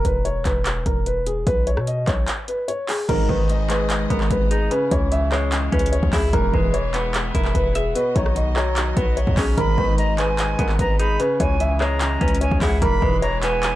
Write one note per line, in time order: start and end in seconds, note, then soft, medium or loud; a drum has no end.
0.05 0.44 E1 loud
0.05 0.24 B4 medium
0.05 kick loud
0.05 closed hi-hat medium
0.25 0.44 C#5 medium
0.25 closed hi-hat medium
0.45 0.84 E1 loud
0.45 0.84 B4 medium
0.45 kick loud
0.45 clap medium
0.45 closed hi-hat medium
0.66 clap loud
0.66 closed hi-hat medium
0.86 1.44 E1 loud
0.86 1.05 A#4 medium
0.86 kick loud
0.86 closed hi-hat medium
1.06 1.25 B4 medium
1.06 closed hi-hat medium
1.26 1.45 G#4 medium
1.26 closed hi-hat medium
1.46 1.79 B1 loud
1.46 1.65 B4 loud
1.46 kick loud
1.46 closed hi-hat medium
1.67 1.86 C#5 medium
1.67 closed hi-hat medium
1.77 2.06 B2 loud
1.77 cross-stick loud
1.87 2.06 D#5 medium
1.87 closed hi-hat medium
2.07 2.27 B1 loud
2.07 2.26 C#5 medium
2.07 kick medium
2.07 clap medium
2.07 closed hi-hat medium
2.28 clap loud
2.28 closed hi-hat medium
2.48 2.67 B4 medium
2.48 closed hi-hat medium
2.68 2.87 C#5 medium
2.68 closed hi-hat medium
2.88 3.07 G#4 medium
2.88 clap loud
2.88 open hi-hat medium
3.09 3.28 G#1 loud
3.09 3.47 B1 loud
3.09 3.47 G#2 loud
3.09 3.48 G#2 medium
3.09 3.47 D#3 loud
3.09 4.69 G#3 medium
3.09 4.69 G#4 medium
3.09 3.28 A#4 loud
3.09 4.69 B4 medium
3.09 4.69 D#5 medium
3.09 kick loud
3.09 closed hi-hat medium
3.09 crash loud
3.29 4.07 G#1 loud
3.29 4.31 D#3 medium
3.29 3.48 B4 medium
3.29 kick loud
3.49 4.51 G#2 medium
3.49 3.68 D#5 medium
3.49 closed hi-hat medium
3.69 4.71 G#3 loud
3.69 4.08 B4 medium
3.69 clap medium
3.69 closed hi-hat medium
3.90 clap loud
3.90 closed hi-hat medium
4.10 4.30 G#1 loud
4.10 4.71 B3 medium
4.10 4.29 A#4 medium
4.10 kick loud
4.10 closed hi-hat medium
4.20 clap medium
4.31 4.69 G#1 loud
4.31 4.50 B4 medium
4.31 kick loud
4.31 closed hi-hat medium
4.51 4.71 D#4 medium
4.51 4.70 G#4 medium
4.51 closed hi-hat medium
4.71 5.11 C#3 loud
4.71 6.32 C#3 medium
4.71 6.32 C#4 medium
4.71 6.32 E4 medium
4.71 7.92 G#4 medium
4.71 4.90 B4 loud
4.71 closed hi-hat medium
4.91 5.69 C#2 loud
4.91 5.93 E3 medium
4.91 5.10 C#5 medium
4.91 kick loud
4.91 closed hi-hat medium
5.12 6.13 C#3 medium
5.12 5.31 E5 loud
5.12 closed hi-hat medium
5.32 6.33 G#3 loud
5.32 5.51 C#5 medium
5.32 cross-stick medium
5.32 clap loud
5.52 clap loud
5.52 closed hi-hat medium
5.72 6.02 C#2 loud
5.72 6.33 C#4 medium
5.72 5.91 B4 medium
5.72 kick loud
5.72 closed hi-hat soft
5.79 closed hi-hat medium
5.86 closed hi-hat medium
5.92 6.11 C#5 medium
5.92 closed hi-hat medium
6.03 6.12 C#2 loud
6.03 kick loud
6.13 6.32 C#2 loud
6.13 6.33 E4 medium
6.13 6.32 G#4 medium
6.13 kick medium
6.13 clap loud
6.13 open hi-hat medium
6.33 6.53 E1 loud
6.33 6.72 B1 loud
6.33 6.72 G#2 loud
6.33 6.72 E3 loud
6.33 7.94 E3 medium
6.33 6.72 E3 medium
6.33 7.94 E4 medium
6.33 6.52 A#4 loud
6.33 7.94 B4 medium
6.33 kick loud
6.33 closed hi-hat medium
6.53 7.31 E1 loud
6.53 7.55 G#3 medium
6.53 6.72 B4 medium
6.53 kick loud
6.74 7.75 E3 medium
6.74 6.93 C#5 medium
6.74 closed hi-hat medium
6.94 7.95 B3 medium
6.94 7.32 B4 medium
6.94 clap medium
6.94 closed hi-hat medium
7.14 clap loud
7.14 closed hi-hat medium
7.35 7.54 E1 loud
7.35 7.75 E4 medium
7.35 7.54 A#4 medium
7.35 kick loud
7.35 closed hi-hat medium
7.45 clap medium
7.55 7.94 E1 loud
7.55 7.74 B4 medium
7.55 kick medium
7.55 closed hi-hat medium
7.75 7.94 G#4 medium
7.75 7.96 E5 medium
7.75 closed hi-hat medium
7.95 8.35 B2 medium
7.95 9.56 B3 medium
7.95 9.56 F#4 medium
7.95 8.14 B4 loud
7.95 9.56 C#5 medium
7.95 11.16 D#5 medium
7.95 closed hi-hat medium
8.16 8.94 B1 loud
8.16 9.17 D#3 medium
8.16 8.34 C#5 medium
8.16 kick loud
8.16 closed hi-hat medium
8.26 cross-stick loud
8.36 9.37 B2 medium
8.36 8.55 D#5 medium
8.36 closed hi-hat medium
8.56 9.57 F#3 loud
8.56 8.75 C#5 medium
8.56 cross-stick medium
8.56 clap loud
8.76 clap loud
8.76 closed hi-hat medium
8.97 9.26 B1 loud
8.97 9.57 B3 medium
8.97 9.16 B4 medium
8.97 kick loud
8.97 closed hi-hat medium
9.17 9.36 C#5 medium
9.17 closed hi-hat medium
9.27 9.37 D#2 loud
9.27 kick medium
9.37 9.57 B1 loud
9.37 9.57 C#4 medium
9.37 9.56 G#4 medium
9.37 kick medium
9.37 clap loud
9.37 open hi-hat medium
9.57 9.77 G#1 loud
9.57 9.96 B1 loud
9.57 9.96 G#2 loud
9.57 9.97 G#2 medium
9.57 9.96 D#3 loud
9.57 11.18 G#3 medium
9.57 13.75 G#4 medium
9.57 9.76 A#4 loud
9.57 11.18 B4 medium
9.57 9.96 B5 loud
9.57 kick loud
9.57 closed hi-hat medium
9.78 10.56 G#1 loud
9.78 10.79 D#3 medium
9.78 9.97 B4 medium
9.78 kick loud
9.98 10.99 G#2 medium
9.98 10.17 D#5 medium
9.98 10.17 A#5 medium
9.98 closed hi-hat medium
10.18 11.20 G#3 loud
10.18 10.57 B4 medium
10.18 10.75 G#5 medium
10.18 clap medium
10.18 closed hi-hat medium
10.39 clap loud
10.39 closed hi-hat medium
10.59 10.78 G#1 loud
10.59 11.20 B3 medium
10.59 10.78 A#4 medium
10.59 kick loud
10.59 closed hi-hat medium
10.69 clap medium
10.79 11.18 G#1 loud
10.79 10.98 B4 medium
10.79 10.99 A#5 medium
10.79 kick loud
10.79 closed hi-hat medium
10.99 11.20 D#4 medium
10.99 11.18 G#4 medium
10.99 11.19 B5 medium
10.99 closed hi-hat medium
11.20 11.59 C#3 loud
11.20 12.80 C#3 medium
11.20 12.80 C#4 medium
11.20 13.75 E4 medium
11.20 11.39 B4 loud
11.20 closed hi-hat medium
11.40 12.18 C#2 loud
11.40 12.41 E3 medium
11.40 11.59 C#5 medium
11.40 11.78 G#5 medium
11.40 kick loud
11.40 closed hi-hat medium
11.60 12.62 C#3 medium
11.60 11.79 E5 loud
11.60 closed hi-hat medium
11.81 12.82 G#3 medium
11.81 12.00 C#5 medium
11.81 12.38 A#5 medium
11.81 cross-stick medium
11.81 clap medium
12.01 clap loud
12.01 closed hi-hat medium
12.21 12.50 C#2 loud
12.21 12.82 C#4 medium
12.21 12.40 B4 medium
12.21 kick loud
12.21 closed hi-hat soft
12.28 closed hi-hat medium
12.35 closed hi-hat medium
12.41 12.60 C#5 medium
12.41 12.61 G#5 medium
12.41 closed hi-hat medium
12.51 12.61 C#2 loud
12.51 kick loud
12.61 12.81 C#2 loud
12.61 12.82 E4 medium
12.61 12.81 G#4 medium
12.61 12.81 F#5 medium
12.61 kick medium
12.61 clap loud
12.61 open hi-hat medium
12.82 13.01 E1 loud
12.82 13.20 B1 loud
12.82 13.20 G#2 loud
12.82 13.21 E3 medium
12.82 13.20 E3 loud
12.82 13.75 E3 medium
12.82 13.01 A#4 loud
12.82 13.75 B4 medium
12.82 13.20 B5 loud
12.82 kick loud
12.82 closed hi-hat medium
13.02 13.75 E1 loud
13.02 13.75 G#3 medium
13.02 13.21 B4 medium
13.02 kick loud
13.22 13.75 E3 medium
13.22 13.41 C#5 medium
13.22 13.41 A#5 medium
13.22 closed hi-hat medium
13.43 13.75 B3 loud
13.43 13.75 B4 medium
13.43 13.75 G#5 medium
13.43 clap medium
13.43 closed hi-hat medium
13.63 clap loud
13.63 closed hi-hat medium